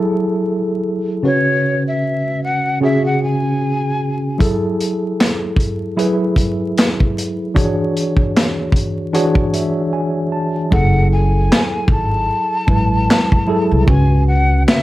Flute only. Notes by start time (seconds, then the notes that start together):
1.26 C#5
1.88 E5
2.44 F#5
2.84 E5
3.06 F#5
3.23 G#5
10.73 F#5
11.12 G#5
11.91 A5
13.88 G#5
14.28 F#5
14.67 E5